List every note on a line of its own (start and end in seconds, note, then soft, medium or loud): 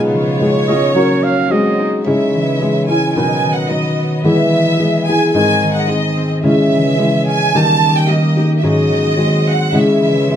0.00 0.40 C#3 medium
0.00 1.00 C#3 medium
0.00 0.38 G#3 medium
0.00 0.39 B3 medium
0.00 0.92 B3 medium
0.00 0.68 C#4 medium
0.00 1.78 D#4 medium
0.00 0.39 F4 medium
0.00 0.93 F4 medium
0.00 0.41 G#4 medium
0.00 1.48 C#5 medium
0.14 1.00 F3 medium
0.14 1.74 C#5 medium
0.40 0.68 G#3 medium
0.40 0.68 B3 medium
0.40 0.68 F4 medium
0.40 0.68 G#4 medium
0.68 0.95 B3 soft
0.68 2.88 C#4 loud
0.68 0.95 F4 soft
0.68 0.95 G#4 soft
0.68 0.92 D#5 medium
0.94 1.55 F#3 medium
0.94 1.49 F#3 medium
0.94 1.49 A#3 medium
0.94 1.50 C#4 medium
0.94 2.04 F#4 medium
0.94 1.50 F#4 medium
0.94 1.51 A#4 medium
0.94 1.25 C#5 medium
1.23 3.21 A#3 medium
1.23 1.53 F5 medium
1.49 2.05 F#3 medium
1.49 2.04 G#3 medium
1.49 2.05 G#3 medium
1.49 2.06 C4 medium
1.49 2.06 G#4 medium
1.49 2.04 C5 medium
1.49 2.06 D#5 medium
1.78 2.40 D#4 medium
2.04 2.60 C#3 soft
2.04 3.19 C#3 medium
2.04 2.60 G#3 medium
2.04 3.14 G#3 medium
2.04 2.60 C#4 medium
2.04 3.14 E4 medium
2.04 2.61 E4 medium
2.04 2.61 G#4 medium
2.04 3.14 C#5 medium
2.04 2.84 E5 medium
2.34 3.19 E3 medium
2.61 2.89 G#3 soft
2.61 3.19 G#3 medium
2.61 2.89 C#4 soft
2.61 2.89 E4 soft
2.61 2.87 G#4 soft
2.88 5.78 C#4 medium
2.88 3.15 C#4 soft
2.88 3.15 E4 soft
2.88 3.15 G#4 soft
2.88 3.13 G#5 medium
3.14 3.47 B2 medium
3.14 3.70 B2 medium
3.14 3.70 D#3 medium
3.14 3.68 F#3 medium
3.14 5.30 B3 medium
3.14 3.68 B3 medium
3.14 3.69 D#4 medium
3.14 4.22 F#4 medium
3.14 3.70 B4 medium
3.14 4.22 D#5 medium
3.14 3.53 G#5 medium
3.44 4.28 D#3 medium
3.55 3.68 F#5 medium
3.69 4.23 F#3 soft
3.69 4.28 F#3 medium
3.69 4.23 B3 medium
3.69 4.24 D#4 soft
3.69 4.24 B4 medium
3.69 4.10 D#5 medium
3.98 4.79 B3 medium
4.23 4.78 E3 medium
4.23 5.37 E3 medium
4.23 4.79 G#3 medium
4.23 4.78 B3 medium
4.23 4.78 E4 medium
4.23 6.40 G#4 medium
4.23 4.79 G#4 medium
4.23 5.02 E5 medium
4.23 5.31 E5 medium
4.53 5.37 G#3 medium
4.79 5.06 G#3 soft
4.79 6.22 B3 medium
4.79 5.07 B3 soft
4.79 5.07 E4 soft
4.79 5.07 G#4 medium
5.06 5.34 B3 soft
5.06 5.34 E4 soft
5.06 7.34 G#4 medium
5.06 5.33 G#4 soft
5.06 5.30 G#5 medium
5.32 6.47 G#2 medium
5.32 5.88 G#2 soft
5.32 5.88 D#3 medium
5.32 5.87 G#3 medium
5.32 6.42 C4 medium
5.32 5.88 C4 medium
5.32 5.88 D#4 medium
5.32 5.88 G#4 medium
5.32 6.42 D#5 medium
5.32 5.71 G#5 medium
5.61 6.47 D#3 medium
5.75 5.87 F#5 medium
5.88 6.47 G#3 medium
5.88 6.43 G#3 soft
5.88 6.44 C4 soft
5.88 6.44 D#4 soft
5.88 6.43 G#4 soft
5.88 6.29 D#5 medium
6.16 6.49 C4 medium
6.43 7.59 C#3 medium
6.43 6.99 C#3 medium
6.43 6.97 G#3 medium
6.43 6.97 C#4 medium
6.43 7.54 C#4 medium
6.43 6.98 E4 medium
6.43 6.98 G#4 medium
6.43 7.54 G#4 medium
6.43 7.24 E5 medium
6.43 7.54 E5 medium
6.72 7.59 E3 medium
6.98 7.54 G#3 soft
6.98 7.59 G#3 medium
6.98 7.54 C#4 medium
6.98 7.54 E4 soft
6.98 7.54 G#4 medium
7.28 9.53 C#4 medium
7.28 7.54 G#5 medium
7.54 8.09 D#3 medium
7.54 8.68 D#3 medium
7.54 8.08 G3 medium
7.54 8.09 A#3 medium
7.54 8.63 A#3 medium
7.54 8.09 D#4 medium
7.54 8.09 G4 medium
7.54 8.63 G4 medium
7.54 8.63 D#5 medium
7.54 7.96 A5 loud
7.83 8.68 G3 medium
7.98 8.10 G5 medium
8.08 8.37 G3 soft
8.08 10.36 A#3 medium
8.08 8.38 A#3 soft
8.08 8.37 D#4 medium
8.08 8.36 G4 soft
8.08 8.50 D#5 medium
8.36 8.64 A#3 soft
8.36 8.63 D#4 soft
8.36 8.69 G4 medium
8.36 8.63 G4 soft
8.58 8.64 E5 medium
8.63 9.23 G#2 medium
8.63 9.18 G#2 medium
8.63 9.18 C#3 medium
8.63 9.15 F#3 medium
8.63 9.73 G#3 medium
8.63 9.17 C#4 medium
8.63 9.17 D#4 medium
8.63 9.73 F#4 medium
8.63 9.18 G#4 medium
8.63 9.19 C#5 medium
8.63 9.48 D#5 medium
8.92 9.23 D#3 medium
9.16 9.72 F#3 medium
9.16 9.73 G#3 medium
9.16 9.78 G#3 medium
9.16 9.72 C4 soft
9.16 9.74 G#4 medium
9.16 9.73 C5 medium
9.47 9.80 C4 medium
9.47 9.74 F#5 medium
9.72 10.28 C#3 medium
9.72 10.36 C#3 medium
9.72 10.30 G#3 medium
9.72 10.36 G#3 medium
9.72 10.29 C#4 medium
9.72 10.29 E4 medium
9.72 10.36 E4 medium
9.72 10.31 G#4 medium
9.72 10.36 C#5 medium
9.72 10.36 E5 medium
10.03 10.36 E3 medium
10.30 10.36 G#3 medium
10.30 10.36 G#3 soft
10.30 10.36 C#4 soft
10.30 10.36 E4 soft
10.30 10.36 G#4 medium